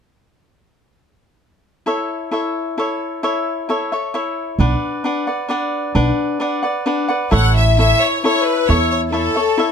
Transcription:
1.86 E4 A4 C#5 E5
2.31 E4 A4 C#5 E5
2.78 E4 A4 C#5 E5
3.23 E4 A4 C#5 E5
3.69 E4 A4 C#5 E5
3.92 A4 C#5 E5
4.14 E4 A4 C#5 E5
4.59 B1 D4 B4 D5 F#5
5.04 D4 B4 D5 F#5
5.27 B4 D5 F#5
5.49 D4 B4 D5 F#5
5.95 B1 D4 B4 D5 F#5
6.40 D4 B4 D5 F#5
6.63 B4 D5 F#5
6.86 D4 B4 D5 F#5
7.08 B4 D5 F#5
7.31 A1 E4 A4 C#5 E5 F#5
7.57 E5
7.78 E4 A4 C#5 E5
8.02 C#5
8.24 E4 A4 C#5 E5
8.45 B4
8.69 E2 E4 A4 C#5 E5
8.91 C#5
9.12 E4 A4 C#5 E5
9.36 A4 C#5 E5
9.58 E4 A4 C#5 E5

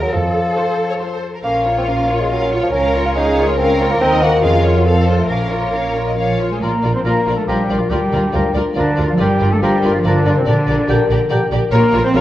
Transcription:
Already playing: D#3 F#4 A#4 C5
0.02 F#3
0.12 F2 F3 A4
0.34 F4
0.55 F4 A4 C5
0.77 C5
0.89 C#5
0.99 F4 A4 C5
1.22 F4
1.35 A#4
1.43 A#1 A#2 A#3 C#4 F4 A#4 F5
1.65 C#4 F4 C#5
1.78 C4
1.87 A#3 C#4 A#4 F5
2.08 F4 A#4 C#5
2.21 G#3
2.29 F#3 C#4 F4 A#4 F5
2.50 C#4 F4 C#5
2.63 F3
2.72 C#2 C#3 C#4 A#4
2.76 F5
2.93 A#3 F4 C#5
2.98 C#5
3.05 F4
3.16 C#4 D#4 F4 G#4 A#4 F5
3.35 F4 A#4 C#5
3.40 C#5
3.49 C#4
3.58 C4 C#4 F4 A#4 F5
3.79 A#3 F4 C#5
3.91 A#3
3.99 D#2 D#3 C4 D#4 A#4 D#5
4.19 A#3 D#5
4.23 F#4 A#4 F#5
4.41 F2 F3 G#3 F4 A#4 F5
4.45 C#4
4.63 F4 A#4 C#5
4.77 F#3
4.84 F3 C4 A4 F5
5.07 F4 A4 C5
5.19 A3
5.27 A#1 A#2 A#3 C#4 A#4 F5
5.51 C#4 F4 C#5
5.73 C#4 F4 C#5 F5
5.96 F4 A#4 C#5
6.07 D#5
6.17 F3 C#4 F4 C#5 F5
6.40 C#4 F4 C#5
6.51 G#3 G#4 C5 G#5
6.61 A#1 A#2 A#3 F4 A#4 D5 A#5
6.73 F3
6.83 A#1 D4 F4 A#4 D5
6.94 C4 F4 C5 C6
7.04 A#1 F3 A#3 D4 F4 A#4 D5 A#5
7.15 D5
7.26 A#1 F4 A#4 D5 F5
7.36 A3 A4 A5 A#5
7.47 A#1 F3 G3 D4 F4 G4 A#4 D5 F5 G5 A#5
7.59 D5
7.69 A#1 F4 A#4 D5
7.79 F3 F4 F5
7.90 D2 D3 G3 F4 G4 A#4 D5 G5
8.02 A#3
8.11 D2 D4 F4 A#4 D5
8.22 F4
8.32 D2 F3 F4 A#4 D5 A#5
8.44 D5
8.54 D2 F4 A#4 D5 F5
8.65 A#5
8.74 D2 D3 F3 D4 F4 A#4 D5 F5
8.79 A#5
8.87 D5
8.96 D2 F4 A#4 D5
9.00 A#4
9.07 F3 F4 F5
9.18 G1 G2 G3 F4 G4 A#4 D5 G5
9.30 D3
9.39 G1 D4 F4 A#4 D5
9.51 A3 F4 A4 A5
9.61 G1 F3 G3 F4 G4 A#4 D5 G5 A#5
9.73 D5
9.83 G1 F4 A#4 D5 F5
9.93 F3 F4 F5 A#5
10.05 G1 D3 F3 D4 F4 A#4 D5 F5 A#5
10.16 D5
10.26 G1 F4 A#4 D5
10.36 C3 C4 F4 C5
10.46 A#1 A#2 D3 D4 G4 A#4 D5
10.58 A#3
10.67 A#1 D4 G4 A#4 D5
10.79 G4
10.88 A#1 D3 G4 A#4 D5 G5
10.99 D5
11.09 A#1 G4 A#4 D5 G5
11.20 A#5
11.30 A#1 D3 G4 A#4 D5 G5
11.41 D5
11.51 A#1 G4 A#4 D5
11.62 G4
11.72 A#1 A#2 A#3 F4 A#4 C#5 A#5
11.83 F3
11.93 A#1 F4 A#4 C#5
12.04 C4 F4 C5 C6
12.14 A#1 C#3 A#3 F4 A#4 C#5 F5 A#5

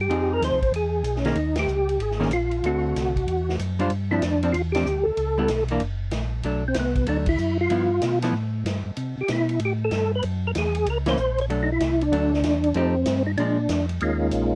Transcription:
0.01 G4
0.09 F2 F3 C4 D#4 G#4, ride
0.34 A#4
0.41 D#2 C5, snare, hi-hat pedal, ride
0.52 C2
0.62 G#1, kick, ride
0.72 E2 G#4, ride
1.04 B1, hi-hat pedal, ride
1.16 C#4, snare
1.25 D#3 A#3 C#4 D#4 G#4, snare, ride
1.35 D#2, ride
1.56 G4, snare, ride
1.67 C#2, hi-hat pedal
1.89 ride
1.99 G#1 G#4, ride
2.11 snare
2.20 D#3 A#3 C#4 G#4, snare
2.31 A#1 F4, hi-hat pedal, ride
2.51 ride
2.63 D2 D3 A3 C4 F#4, ride
2.95 C2, snare, hi-hat pedal, ride
3.16 kick, ride
3.27 E2, ride
3.49 snare
3.59 F#2, hi-hat pedal, ride
3.79 G3 D4 F4 C5, ride
3.90 G2, ride
4.11 F3 C4 D4 E4
4.22 F2 D4, snare, hi-hat pedal, ride
4.43 F3 C4 D4, ride
4.53 E2 F4, ride
4.72 F3 C4 D4 G4, snare, ride
4.86 D2, hi-hat pedal
5.03 D2 A4
5.17 C#2, ride
5.38 G3 B3 E4
5.48 B1, snare, hi-hat pedal, ride
5.68 E3 A#3 D4, ride
5.80 F#1, ride
6.11 A#1, snare, hi-hat pedal, ride
6.43 B1 F#3 A3 D4, ride
6.68 C4
6.74 C2, snare, hi-hat pedal, ride
6.79 B3
6.95 kick, ride
7.06 D2 F#3 A3 D4, ride
7.26 E4, kick, crash
7.38 F#2, hi-hat pedal
7.61 F4
7.70 G2 F3 B3 E4, ride
8.02 B2, snare, hi-hat pedal, ride
8.22 F3 B3 E4, snare, ride
8.33 A2
8.65 G2, snare, hi-hat pedal, ride
8.86 G2
8.97 C3, ride
9.18 C3 G4
9.28 B2, snare, hi-hat pedal, ride
9.33 E4
9.49 ride
9.59 A2, ride
9.65 G4
9.84 A4
9.91 G2, snare, hi-hat pedal, ride
10.15 B4
10.23 F#2, ride
10.47 A#4
10.55 E2 G#4, snare, hi-hat pedal, ride
10.75 ride
10.86 C#2, ride
10.90 A#4
11.06 E3 A#3 C#4 C5, snare, ride
11.17 A#1, hi-hat pedal
11.38 C#5, ride
11.49 B1 F#3 A3 D4, ride
11.63 D#4
11.72 E4
11.79 C2, snare, hi-hat pedal, ride
12.01 D4, ride
12.11 D2 F#3 A3 D4, ride
12.33 snare
12.42 E2, snare, hi-hat pedal, ride
12.63 ride
12.74 F2 F3 A3 C4 D#4 G4, ride
13.05 G2, snare, hi-hat pedal, ride
13.27 D#4
13.37 A#2 F3 G#3 D4, ride
13.69 F2, snare, hi-hat pedal, ride
13.89 ride
14.00 D#2 G#3 A#3 C#4 D#4 F4, ride
14.31 A#1, hi-hat pedal, ride

